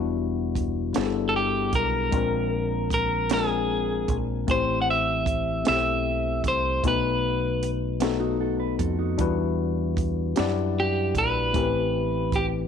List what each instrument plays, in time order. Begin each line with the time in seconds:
Already playing: fingered electric bass E1, tine electric piano G3 B3 D4 E4 F#4
0.55 kick, closed hi-hat
0.94 fingered electric bass G1, tine electric piano G3 B3 D4 E4 G#4, snare, closed hi-hat
1.04 tine electric piano A4
1.29 clean electric guitar A4
1.36 clean electric guitar G4
1.73 fingered electric bass B1, clean electric guitar A#4, kick, closed hi-hat
2.11 fingered electric bass A#1, tine electric piano G#3 C4 D4 F4, kick, closed hi-hat
2.16 tine electric piano A#4
2.90 clean electric guitar A#4, kick, closed hi-hat
3.30 tine electric piano G#3 C4 D4, clean electric guitar G#4, snare, closed hi-hat
3.34 tine electric piano F4 A#4
4.08 fingered electric bass A#1, kick, closed hi-hat
4.47 fingered electric bass A1, tine electric piano A3 C4 E4 G4, clean electric guitar C5, kick, closed hi-hat
4.52 tine electric piano C5
4.82 clean electric guitar F#5
4.91 clean electric guitar E5
5.26 kick, closed hi-hat
5.64 tine electric piano A3 C4 E4 G4, snare, closed hi-hat
5.68 fingered electric bass B1, tine electric piano A4, clean electric guitar E5
6.44 fingered electric bass C2, kick, closed hi-hat
6.48 clean electric guitar C5
6.83 fingered electric bass B1, tine electric piano A3 B3 D#4 F#4, kick, closed hi-hat
6.87 tine electric piano B4, clean electric guitar B4
7.63 closed hi-hat
8.00 tine electric piano A3 B3 D#4 F#4, snare, closed hi-hat
8.04 tine electric piano A4
8.20 clean electric guitar D#4 F#4
8.40 clean electric guitar F#4 A4
8.60 clean electric guitar B4
8.79 fingered electric bass F2, clean electric guitar F#4 A4, kick, closed hi-hat
8.99 clean electric guitar D#4 F#4
9.18 fingered electric bass E2, tine electric piano G3 D4 E4 F#4 B4, kick, closed hi-hat
9.97 kick, closed hi-hat
10.36 fingered electric bass F#2, tine electric piano D4 E4 G4 F#5, snare, closed hi-hat
10.40 tine electric piano D5
10.80 clean electric guitar G4
11.15 fingered electric bass A#1, clean electric guitar B4, kick, closed hi-hat
11.53 fingered electric bass A1, tine electric piano A3 C4 E4 G4, kick, closed hi-hat
11.57 tine electric piano A#4
11.63 tine electric piano B4
12.32 clean electric guitar G4, kick, closed hi-hat